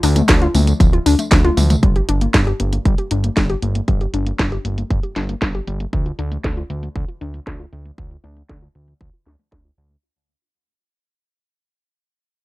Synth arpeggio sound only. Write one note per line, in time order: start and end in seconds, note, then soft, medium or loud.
0.03 0.16 D4 loud
0.16 0.27 A3 medium
0.29 0.39 F3 medium
0.42 0.52 F4 loud
0.55 0.61 A3 medium
0.68 0.78 A3 medium
0.80 0.92 F3 medium
0.93 1.03 F4 medium
1.06 1.18 D4 loud
1.19 1.29 A3 medium
1.32 1.42 F3 medium
1.45 1.55 F4 loud
1.57 1.63 A3 medium
1.70 1.80 A3 medium
1.83 1.95 G3 medium
1.96 2.06 G4 medium
2.09 2.21 D4 loud
2.21 2.32 A#3 medium
2.34 2.44 G3 medium
2.47 2.57 G4 medium
2.60 2.66 A#3 medium
2.73 2.83 A#3 medium
2.86 2.98 G3 medium
2.98 3.09 G4 medium
3.11 3.23 D4 loud
3.24 3.34 A#3 medium
3.37 3.47 G3 medium
3.50 3.60 G4 loud
3.62 3.69 A#3 medium
3.75 3.86 A#3 medium
3.88 4.00 G3 medium
4.01 4.11 G4 medium
4.14 4.26 D4 loud
4.26 4.37 A#3 medium
4.39 4.50 G3 medium
4.52 4.62 G4 loud
4.65 4.71 A#3 medium
4.78 4.88 A#3 medium
4.91 5.03 G3 medium
5.03 5.14 G4 medium
5.16 5.28 D4 loud
5.29 5.39 A#3 medium
5.42 5.52 G3 medium
5.55 5.65 G4 loud
5.68 5.74 A#3 medium
5.80 5.91 A#3 medium
5.93 6.05 F3 medium
6.06 6.16 F4 medium
6.19 6.31 D4 loud
6.32 6.42 A3 medium
6.44 6.55 F3 medium
6.57 6.67 F4 loud
6.70 6.76 A3 medium
6.83 6.93 A3 medium
6.95 7.08 F3 medium
7.08 7.19 F4 medium
7.21 7.33 D4 loud
7.34 7.44 A3 medium
7.47 7.57 F3 medium
7.60 7.70 F4 loud
7.73 7.79 A3 medium
7.85 7.96 A3 medium
7.98 8.10 F3 medium
8.11 8.21 F4 medium
8.24 8.36 D4 loud
8.37 8.47 A3 medium
8.49 8.60 F3 medium
8.62 8.73 F4 medium
8.75 8.81 A3 medium
8.88 8.98 A3 medium
9.01 9.13 F3 medium
9.13 9.24 F4 medium
9.26 9.39 D4 loud
9.39 9.49 A3 medium
9.52 9.62 F3 medium
9.65 9.75 F4 loud
9.77 9.84 A3 medium
9.90 10.01 A3 medium